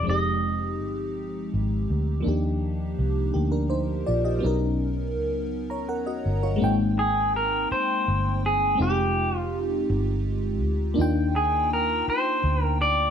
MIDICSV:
0, 0, Header, 1, 5, 480
1, 0, Start_track
1, 0, Key_signature, -3, "major"
1, 0, Tempo, 727273
1, 39, Time_signature, 6, 3, 24, 8
1, 8648, End_track
2, 0, Start_track
2, 0, Title_t, "Clean electric guitar"
2, 0, Program_c, 0, 27
2, 63, Note_on_c, 0, 75, 79
2, 984, Note_off_c, 0, 75, 0
2, 4613, Note_on_c, 0, 68, 87
2, 4853, Note_off_c, 0, 68, 0
2, 4860, Note_on_c, 0, 70, 90
2, 5092, Note_off_c, 0, 70, 0
2, 5095, Note_on_c, 0, 72, 95
2, 5581, Note_off_c, 0, 72, 0
2, 5583, Note_on_c, 0, 68, 89
2, 5818, Note_off_c, 0, 68, 0
2, 5822, Note_on_c, 0, 67, 84
2, 6185, Note_off_c, 0, 67, 0
2, 6185, Note_on_c, 0, 65, 84
2, 6324, Note_off_c, 0, 65, 0
2, 7499, Note_on_c, 0, 68, 79
2, 7736, Note_off_c, 0, 68, 0
2, 7744, Note_on_c, 0, 70, 82
2, 7956, Note_off_c, 0, 70, 0
2, 7984, Note_on_c, 0, 72, 90
2, 8340, Note_off_c, 0, 72, 0
2, 8340, Note_on_c, 0, 70, 90
2, 8456, Note_off_c, 0, 70, 0
2, 8458, Note_on_c, 0, 74, 108
2, 8648, Note_off_c, 0, 74, 0
2, 8648, End_track
3, 0, Start_track
3, 0, Title_t, "FM electric piano"
3, 0, Program_c, 1, 5
3, 0, Control_c, 1, 64, 127
3, 18, Note_on_c, 1, 53, 53
3, 29, Note_on_c, 1, 56, 52
3, 45, Note_on_c, 1, 60, 51
3, 48, Control_c, 1, 64, 0
3, 57, Note_on_c, 1, 63, 50
3, 69, Note_on_c, 1, 67, 59
3, 155, Control_c, 1, 64, 127
3, 1442, Note_off_c, 1, 53, 0
3, 1447, Note_off_c, 1, 56, 0
3, 1455, Note_on_c, 1, 53, 66
3, 1456, Note_off_c, 1, 60, 0
3, 1462, Note_off_c, 1, 63, 0
3, 1467, Note_off_c, 1, 67, 0
3, 1468, Note_on_c, 1, 58, 61
3, 1480, Note_on_c, 1, 62, 60
3, 1487, Control_c, 1, 64, 0
3, 1493, Note_on_c, 1, 63, 57
3, 1507, Note_on_c, 1, 67, 70
3, 1601, Control_c, 1, 64, 127
3, 2179, Note_off_c, 1, 58, 0
3, 2185, Note_off_c, 1, 62, 0
3, 2192, Note_off_c, 1, 63, 0
3, 2194, Note_off_c, 1, 67, 0
3, 2202, Note_on_c, 1, 67, 54
3, 2204, Note_on_c, 1, 58, 47
3, 2315, Note_off_c, 1, 67, 0
3, 2316, Note_off_c, 1, 58, 0
3, 2320, Note_on_c, 1, 70, 56
3, 2324, Note_on_c, 1, 62, 47
3, 2434, Note_off_c, 1, 70, 0
3, 2436, Note_off_c, 1, 62, 0
3, 2440, Note_on_c, 1, 72, 62
3, 2444, Note_on_c, 1, 63, 52
3, 2667, Note_off_c, 1, 72, 0
3, 2670, Note_off_c, 1, 63, 0
3, 2683, Note_on_c, 1, 74, 61
3, 2688, Note_on_c, 1, 65, 49
3, 2795, Note_off_c, 1, 74, 0
3, 2797, Note_off_c, 1, 65, 0
3, 2802, Note_on_c, 1, 75, 54
3, 2807, Note_on_c, 1, 67, 45
3, 2880, Note_off_c, 1, 53, 0
3, 2896, Note_on_c, 1, 54, 65
3, 2906, Note_on_c, 1, 59, 64
3, 2920, Note_on_c, 1, 61, 60
3, 2926, Control_c, 1, 64, 0
3, 2932, Note_on_c, 1, 63, 59
3, 2945, Note_on_c, 1, 70, 71
3, 3029, Note_off_c, 1, 75, 0
3, 3031, Note_off_c, 1, 67, 0
3, 3045, Control_c, 1, 64, 127
3, 3638, Note_off_c, 1, 70, 0
3, 3762, Note_on_c, 1, 82, 51
3, 3767, Note_on_c, 1, 73, 46
3, 3874, Note_off_c, 1, 82, 0
3, 3877, Note_off_c, 1, 73, 0
3, 3885, Note_on_c, 1, 78, 58
3, 3887, Note_on_c, 1, 70, 52
3, 3996, Note_off_c, 1, 78, 0
3, 3997, Note_off_c, 1, 70, 0
3, 4003, Note_on_c, 1, 75, 57
3, 4008, Note_on_c, 1, 66, 48
3, 4229, Note_off_c, 1, 75, 0
3, 4232, Note_off_c, 1, 66, 0
3, 4243, Note_on_c, 1, 73, 53
3, 4247, Note_on_c, 1, 65, 47
3, 4321, Note_off_c, 1, 54, 0
3, 4326, Note_off_c, 1, 59, 0
3, 4330, Note_on_c, 1, 56, 77
3, 4333, Note_off_c, 1, 61, 0
3, 4339, Note_off_c, 1, 63, 0
3, 4343, Note_on_c, 1, 58, 66
3, 4356, Note_on_c, 1, 60, 67
3, 4366, Note_on_c, 1, 63, 68
3, 4368, Control_c, 1, 64, 0
3, 4381, Note_on_c, 1, 79, 84
3, 4469, Note_off_c, 1, 73, 0
3, 4471, Note_off_c, 1, 65, 0
3, 4491, Control_c, 1, 64, 127
3, 5758, Note_off_c, 1, 56, 0
3, 5764, Note_off_c, 1, 58, 0
3, 5771, Note_off_c, 1, 60, 0
3, 5776, Note_off_c, 1, 63, 0
3, 5776, Note_on_c, 1, 56, 64
3, 5783, Note_off_c, 1, 79, 0
3, 5792, Note_on_c, 1, 60, 59
3, 5802, Note_on_c, 1, 63, 59
3, 5806, Control_c, 1, 64, 0
3, 5816, Note_on_c, 1, 65, 55
3, 5830, Note_on_c, 1, 66, 57
3, 5857, Note_off_c, 1, 66, 0
3, 5872, Note_on_c, 1, 67, 71
3, 5919, Control_c, 1, 64, 127
3, 7201, Note_off_c, 1, 56, 0
3, 7209, Note_off_c, 1, 60, 0
3, 7214, Note_off_c, 1, 63, 0
3, 7221, Note_off_c, 1, 65, 0
3, 7221, Note_on_c, 1, 58, 77
3, 7230, Note_on_c, 1, 62, 72
3, 7244, Note_on_c, 1, 63, 71
3, 7248, Control_c, 1, 64, 0
3, 7249, Note_off_c, 1, 67, 0
3, 7259, Note_on_c, 1, 65, 70
3, 7270, Note_on_c, 1, 79, 86
3, 7364, Control_c, 1, 64, 127
3, 8643, Note_off_c, 1, 58, 0
3, 8648, Note_off_c, 1, 62, 0
3, 8648, Note_off_c, 1, 63, 0
3, 8648, Note_off_c, 1, 65, 0
3, 8648, Note_off_c, 1, 79, 0
3, 8648, End_track
4, 0, Start_track
4, 0, Title_t, "Fingered electric bass"
4, 0, Program_c, 2, 33
4, 52, Note_on_c, 2, 29, 76
4, 533, Note_off_c, 2, 29, 0
4, 533, Note_on_c, 2, 31, 72
4, 980, Note_off_c, 2, 31, 0
4, 1014, Note_on_c, 2, 32, 79
4, 1223, Note_off_c, 2, 32, 0
4, 1255, Note_on_c, 2, 38, 70
4, 1464, Note_off_c, 2, 38, 0
4, 1495, Note_on_c, 2, 39, 83
4, 1940, Note_off_c, 2, 39, 0
4, 1972, Note_on_c, 2, 36, 79
4, 2182, Note_off_c, 2, 36, 0
4, 2213, Note_on_c, 2, 38, 88
4, 2659, Note_off_c, 2, 38, 0
4, 2694, Note_on_c, 2, 34, 74
4, 2903, Note_off_c, 2, 34, 0
4, 2933, Note_on_c, 2, 35, 84
4, 3413, Note_off_c, 2, 35, 0
4, 3413, Note_on_c, 2, 37, 73
4, 3892, Note_off_c, 2, 37, 0
4, 3892, Note_on_c, 2, 39, 80
4, 4102, Note_off_c, 2, 39, 0
4, 4130, Note_on_c, 2, 31, 74
4, 4341, Note_off_c, 2, 31, 0
4, 4369, Note_on_c, 2, 32, 89
4, 5058, Note_off_c, 2, 32, 0
4, 5333, Note_on_c, 2, 31, 88
4, 5779, Note_off_c, 2, 31, 0
4, 5809, Note_on_c, 2, 29, 93
4, 6497, Note_off_c, 2, 29, 0
4, 6532, Note_on_c, 2, 31, 100
4, 7011, Note_off_c, 2, 31, 0
4, 7011, Note_on_c, 2, 38, 79
4, 7221, Note_off_c, 2, 38, 0
4, 7250, Note_on_c, 2, 39, 95
4, 7938, Note_off_c, 2, 39, 0
4, 8208, Note_on_c, 2, 38, 89
4, 8648, Note_off_c, 2, 38, 0
4, 8648, End_track
5, 0, Start_track
5, 0, Title_t, "Muted fingered electric bass strokes"
5, 5091, Note_on_c, 9, 29, 47
5, 5157, Note_off_c, 9, 29, 0
5, 7971, Note_on_c, 9, 29, 48
5, 8037, Note_off_c, 9, 29, 0
5, 8648, End_track
0, 0, End_of_file